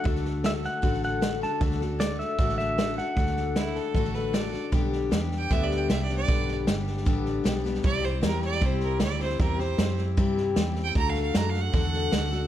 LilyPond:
<<
  \new Staff \with { instrumentName = "Pedal steel guitar" } { \time 4/4 \key g \major \tempo 4 = 154 r4 e''8 fis''4 fis''4 a''8 | r4 d''8 e''4 e''4 fis''8~ | fis''2.~ fis''8 r8 | r1 |
r1 | r1 | r1 | r1 | }
  \new Staff \with { instrumentName = "Fiddle" } { \time 4/4 \key g \major r1 | r1 | r4 e'8 a'4 b'8 d''8. r16 | r4 \tuplet 3/2 { r4 g''8 e''8 d''8 g''8 e''8 d''8 d''8~ } |
d''8 r2. r8 | d''8 c''8 bes'8 d''8 c''8 bes'8 d''8 c''8 | bes'8 c''4 r4. \tuplet 3/2 { r4 g''8 } | \tuplet 3/2 { bes''8 f''8 f''8 bes''8 f''8 fis''8~ } fis''2 | }
  \new Staff \with { instrumentName = "Steel-string acoustic guitar" } { \time 4/4 \key g \major <d a d' fis' a'>4 <a d' fis' a'>4 <d a d' fis' a'>4 <a d' fis' a'>8 <d' fis' a'>8 | <d a d' fis' a'>8 <d' fis' a'>8 <a d' fis' a'>4 <d a d' fis' a'>4 <a d' fis' a'>8 <d' fis' a'>8 | <d a d' fis' a'>4 <a d' fis' a'>4 <d a d' fis' a'>4 <a d' fis' a'>8 <d' fis' a'>8 | <g, d g b d' g'>4 <g b d' g'>4 <g, d g b d' g'>4 <g b d' g'>8 <g b d' g'>8 |
<g, d g b d' g'>4 <g b d' g'>4 <g, d g b d' g'>4 <g b d' g'>8 <g b d' g'>8 | <c g c' e' g'>8 <c' e' g'>8 <g c' e' g'>4 <c g c' e' g'>4 <g c' e' g'>8 <c' e' g'>8 | <c g c' e' g'>8 <c' e' g'>8 <c' e' g'>4 <c g c' e' g'>4 <g c' e' g'>8 <c' e' g'>8 | <d a d' fis' a'>4 <a d' fis' a'>4 <d a d' fis' a'>4 <a d' fis' a'>8 <d' fis' a'>8 | }
  \new Staff \with { instrumentName = "Fingered electric bass" } { \clef bass \time 4/4 \key g \major d,2 a,,2 | d,2 a,,2 | d,2 a,,2 | b,,4 e,4 d,4 c,4 |
b,,4 g,,4 a,,4 b,,4 | c,4 e,4 c,4 d,4 | e,4 fis,4 g,4 e,4 | d,4 fis,4 e,4 d,4 | }
  \new DrumStaff \with { instrumentName = "Drums" } \drummode { \time 4/4 <bd sn>16 sn16 sn8 <hhp sn>8 sn8 <bd sn>16 sn16 sn8 <hhp sn>8 sn8 | <bd sn>16 sn16 sn8 <hhp sn>8 sn8 <bd sn>16 sn16 sn8 <hhp sn>8 sn8 | <bd sn>16 sn16 sn8 <hhp sn>8 sn8 <bd sn>16 sn16 sn8 <hhp sn>8 sn8 | <bd sn>8 sn8 <hhp sn>8 sn8 <bd sn>8 sn8 <hhp sn>8 sn8 |
<bd sn>8 sn8 <hhp sn>8 sn16 sn16 <bd sn>8 sn8 <hhp sn>8 sn16 sn16 | <bd sn>8 sn8 <hhp sn>8 sn16 sn16 <bd sn>8 sn8 <hhp sn>8 sn16 sn16 | <bd sn>8 sn8 <hhp sn>8 sn8 <bd sn>8 sn8 <hhp sn>8 sn8 | <bd sn>8 sn8 <hhp sn>8 sn8 <bd sn>8 sn8 <hhp sn>8 sn8 | }
>>